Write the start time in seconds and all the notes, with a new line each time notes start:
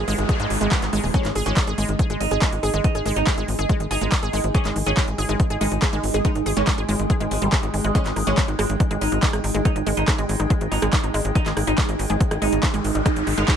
Already playing: G#3 D#4 G#4 B5, noise sweep
0.08 G#1 G#3, open hi-hat
0.18 G#1, closed hi-hat
0.29 G#4, kick, closed hi-hat
0.40 G#2 G#3, closed hi-hat
0.50 G#1, open hi-hat
0.61 G#1 G#3, closed hi-hat
0.72 B3, kick, clap, closed hi-hat
0.82 G#1, clap, closed hi-hat
0.90 G#1 G#3 G5, open hi-hat
1.03 D#1 G#4, open hi-hat
1.14 G#3 C#4, kick, closed hi-hat
1.25 G#1, clap, closed hi-hat
1.35 G#1 G#4, open hi-hat
1.46 G#1 G#3 C#4, closed hi-hat
1.57 kick, clap, closed hi-hat
1.67 G#1 G#4, closed hi-hat
1.78 G#1 G#3, open hi-hat
1.89 G#1, closed hi-hat
1.99 G#4, kick, closed hi-hat
2.10 G#1 G#3, closed hi-hat
2.21 G#1 D#4, open hi-hat
2.31 G#1 G#4, closed hi-hat
2.42 G#3, kick, clap, closed hi-hat
2.52 G#1, closed hi-hat
2.63 G#1 G#4, open hi-hat
2.74 G#1 G#3, closed hi-hat
2.84 D#4, kick, closed hi-hat
2.95 G#1 G#4, closed hi-hat
3.06 G#1 G#3, open hi-hat
3.16 G#1 D#4, closed hi-hat
3.27 G#4, kick, clap, closed hi-hat
3.37 G#1 G#3, closed hi-hat
3.48 G#1, open hi-hat
3.59 G#1 G#4, closed hi-hat
3.69 G#3, kick, closed hi-hat
3.80 G#1, closed hi-hat
3.91 G#1 D#4 G#4, open hi-hat
4.01 G#1 G#3, closed hi-hat
4.12 kick, clap, closed hi-hat
4.23 G#1 G#4, closed hi-hat
4.33 G#1 G#3, open hi-hat
4.44 G#1, closed hi-hat
4.55 C#4 G#4, kick, closed hi-hat
4.65 G#1 G#3, clap, closed hi-hat
4.76 G#1, open hi-hat
4.86 G#1 C#4 G#4, closed hi-hat
4.97 G#3, kick, clap, closed hi-hat
5.08 G#1, closed hi-hat
5.18 G#1 G#4, open hi-hat
5.29 G#1 G#3, closed hi-hat
5.40 kick, closed hi-hat
5.50 G#1 G#4, closed hi-hat
5.61 G#1 G#3 D#4, open hi-hat
5.71 G#1, closed hi-hat
5.82 G#4, kick, clap, closed hi-hat
5.93 G#1 G#3, closed hi-hat
6.03 G#1, open hi-hat
6.14 G#1 G#4, closed hi-hat
6.25 G#3 D#4, kick, closed hi-hat
6.35 G#1, closed hi-hat
6.46 G#1 G#4, open hi-hat
6.57 G#1 G#3 C#4, closed hi-hat
6.67 kick, clap, closed hi-hat
6.78 G#1 G#4, closed hi-hat
6.89 G#1 G#3, open hi-hat
6.99 G#1, closed hi-hat
7.10 G#4, kick, closed hi-hat
7.20 G#1 G#3, closed hi-hat
7.31 G#1 G#3, open hi-hat
7.42 G#1 G3, closed hi-hat
7.52 G#4, kick, clap, closed hi-hat
7.63 G#1, closed hi-hat
7.74 G#1 G#3, open hi-hat
7.84 G#1 G#3, closed hi-hat
7.95 G#3 C#4, kick, closed hi-hat
8.06 G#1, clap, closed hi-hat
8.16 G#1 D#4, cross-stick, open hi-hat
8.27 G#1 G#3 C#4, closed hi-hat
8.38 kick, clap, closed hi-hat
8.48 G#1 D#4, closed hi-hat
8.59 G#1 G#3, cross-stick, open hi-hat
8.69 G#1, closed hi-hat
8.80 D#4, kick, closed hi-hat
8.91 G#1 G#3, cross-stick, closed hi-hat
9.01 G#1 D#4, open hi-hat
9.12 G#1 D#4, closed hi-hat
9.23 G#3, kick, clap, closed hi-hat
9.33 G#1, cross-stick, closed hi-hat
9.44 G#1 D#4, open hi-hat
9.55 G#1 G#3, closed hi-hat
9.65 D#4, kick, cross-stick, closed hi-hat
9.76 G#1 D#4, closed hi-hat
9.86 G#1 G#3, open hi-hat
9.97 G#1 D#4, closed hi-hat
10.08 D#4, kick, cross-stick, clap, closed hi-hat
10.18 G#1 G#3, closed hi-hat
10.29 G#1, open hi-hat
10.40 G#1 D#4, cross-stick, closed hi-hat
10.50 G#3, kick, closed hi-hat
10.61 G#1, closed hi-hat
10.72 G#1 D#4, open hi-hat
10.82 G#1 G#3, cross-stick, closed hi-hat
10.93 kick, clap, closed hi-hat
11.04 G#1 D#4, closed hi-hat
11.14 G#1 G#3, cross-stick, open hi-hat
11.25 G#1, closed hi-hat
11.35 D#4, kick, closed hi-hat, riser
11.46 G#1 G#3, clap, closed hi-hat
11.57 G#1, cross-stick, open hi-hat
11.67 G#1 D#4, closed hi-hat
11.78 G#3, kick, clap, closed hi-hat
11.89 G#1, cross-stick, closed hi-hat
11.99 G#1 D#4, open hi-hat
12.10 G#1 G#3, closed hi-hat
12.21 kick, closed hi-hat
12.31 G#1 D#4, cross-stick, closed hi-hat
12.42 G#1 G#3 D#4, open hi-hat
12.52 G#1, closed hi-hat
12.63 D#4, kick, cross-stick, clap, closed hi-hat
12.74 G#1 G#3, closed hi-hat
12.84 G#1, open hi-hat
12.95 G#1 D#4, closed hi-hat
13.06 G#3 D#4, kick, cross-stick, closed hi-hat
13.16 G#1, closed hi-hat
13.27 G#1 D#4, open hi-hat
13.38 G#1 G#3 D#4, cross-stick, closed hi-hat
13.48 kick, clap, closed hi-hat